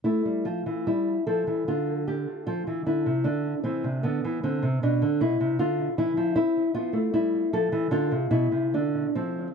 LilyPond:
\new Staff \with { instrumentName = "Nylon-string guitar" } { \clef bass \time 4/4 \key a \minor \tempo 4 = 76 << { e'8 f'8 e'8 a'8 f'8 g'8 f'8 e'8 | d'8 c'8 b8 c'8 d'8 e'8 f'8 e'8 | e'8 f'8 e'8 a'8 f'8 e'8 d'8 c'8 | } \\ { a16 g16 f16 e16 g8 f16 e16 d4 f16 e16 d16 c16 | d8 e16 c16 d16 e16 d16 c16 b,16 d16 b,16 c16 d8 e16 f16 | c'8 b16 a16 g8 f16 e16 d16 c16 b,16 c16 d8 f8 | } >> }